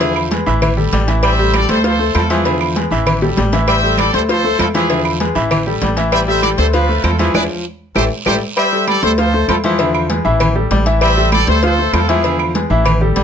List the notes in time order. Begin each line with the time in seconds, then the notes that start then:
Already playing: E2 F3 E4 G#4
0.00 D3 E4 E5, cowbell, low agogo, long guiro
0.16 high conga, low agogo, claves
0.31 G#3 G#4 B4, cowbell, high conga, low timbale, short guiro
0.46 A1 E3 E4 E5, high conga, low agogo, short guiro
0.62 E3, cowbell, high conga, low conga, low agogo, long guiro, claves
0.77 G3 G4 A4, high conga, low conga
0.92 A1 G3, cowbell, high conga, low timbale, low agogo, short guiro
1.08 E3 E4 E5, cowbell, high conga, short guiro
1.23 G3 C5 E5, cowbell, high conga, low agogo, long guiro, claves
1.38 G3 G4 A4, high conga
1.53 A4 D5, cowbell, high conga, low timbale, low agogo, short guiro, claves
1.69 D2 A3 A4 C5, cowbell, short guiro
1.84 F3 F4 A4 C5 F5, cowbell, high conga, low agogo, long guiro
1.99 A3 A4 C5, high conga
2.14 E2 F3 F4 A4, cowbell, high conga, low timbale, low agogo, short guiro, claves
2.29 E3 F3 E4 G#4 E5, cowbell, high conga, short guiro
2.45 D3 E4 E5, cowbell, high conga, low agogo, long guiro
2.60 high conga, low agogo, claves
2.76 G#3 G#4 B4, cowbell, high conga, low timbale, short guiro
2.91 A1 E3 E4 E5, high conga, low agogo, short guiro
3.06 E3, cowbell, high conga, low conga, low agogo, long guiro, claves
3.22 G3 G4 A4, high bongo, high conga, low conga
3.37 A1 G3, cowbell, high bongo, high conga, low timbale, low agogo, short guiro
3.52 E3 E4 E5, cowbell, low bongo, short guiro
3.67 G3 C5 E5, cowbell, high conga, low agogo, long guiro, claves
3.83 G3 G4 A4, high conga
3.98 A4 D5, cowbell, high conga, low timbale, low agogo, short guiro, claves
4.13 D2 A3 A4 C5, cowbell, short guiro
4.28 F3 F4 A4 C5 F5, cowbell, high conga, low agogo, long guiro
4.44 A3 A4 C5, high conga
4.59 E2 F3 F4 A4, cowbell, high conga, low timbale, low agogo, short guiro, claves
4.74 E3 F3 E4 G#4 E5, cowbell, high conga, short guiro
4.90 D3 E4 E5, cowbell, low agogo, long guiro
5.05 high conga, low agogo, claves
5.20 G#3 G#4 B4, cowbell, high conga, low timbale, short guiro
5.35 A1 E3 E4 E5, high conga, low agogo, short guiro
5.51 E3, cowbell, high conga, low conga, low agogo, long guiro, claves
5.66 G3 G4 A4, high conga
5.81 A1 G3, cowbell, high conga, low timbale, low agogo, short guiro
5.97 E3 E4 E5, cowbell, short guiro
6.12 G3 C5 E5, cowbell, high conga, low agogo, long guiro, claves
6.27 G3 G4 A4 C5 E5, high conga
6.43 A4 D5, cowbell, high conga, low timbale, low agogo, short guiro, claves
6.58 D2 A3 A4 C5, cowbell, short guiro
6.73 F3 F4 B4 F5, cowbell, high conga, low agogo, long guiro
6.89 A3 A4 C5, high conga
7.04 E2 F3 F4 A4, cowbell, high conga, low timbale, low agogo, short guiro, claves
7.19 E3 F3 E4 G#4 E5, cowbell, high conga, short guiro
7.34 E2 D4 E4 G#4 B4, cowbell, high conga, high timbale, long guiro, claves
7.95 A1 E3 E4 G4 A4 C5, cowbell, high conga, high timbale, long guiro, claves
8.26 A1 G3 E4 G4 A4 C5, cowbell, high conga, high timbale, long guiro, claves
8.57 G3 C5 E5, cowbell, high conga, low agogo, claves
8.72 G3 G4 A4, high conga
8.87 A4 D5, cowbell, high conga, low timbale, low agogo, claves
9.03 D2 A3 A4 C5, cowbell
9.18 F3 F4 A4 C5 F5, cowbell, high conga, low agogo
9.33 A3 A4 C5, high conga
9.48 E2 F3 F4 A4, cowbell, high conga, low timbale, low agogo, claves
9.64 E3 F3 E4 G#4 E5, cowbell, high conga
9.79 D3 E4 E5, cowbell, high conga, low agogo
9.94 high conga, low agogo, claves
10.10 G#3 G#4 B4, cowbell, high conga, low timbale
10.25 A1 E3 E4 E5, high conga, low agogo
10.40 E3, cowbell, high conga, low conga, low agogo, claves
10.55 G3 G4 A4, high conga
10.71 A1 G3, cowbell, high conga, low timbale, low agogo
10.86 E3 E4 E5, cowbell, high conga
11.01 G3 C5 E5, cowbell, high conga, low agogo, claves
11.17 G3 G4 A4, high conga
11.32 A4 D5, cowbell, high conga, low timbale, low agogo, claves
11.47 D2 A3 A4 C5, cowbell
11.63 F3 F4 A4 C5 F5, cowbell, high conga, low agogo
11.78 A3 A4 C5, high conga
11.93 E2 F3 F4 A4, cowbell, high conga, low timbale, low agogo, claves
12.09 E3 F3 E4 G#4 E5, cowbell, high conga
12.24 D3 E4 E5, cowbell, low agogo
12.39 high conga, low agogo, claves
12.55 G#3 G#4 B4, cowbell, high conga, low timbale
12.70 A1 E3 E4 E5, high conga, low agogo
12.85 E3, cowbell, high conga, low conga, low agogo, claves
13.01 G3 G4 A4, high conga, low conga
13.16 A1 G3, cowbell, high conga, low timbale, low agogo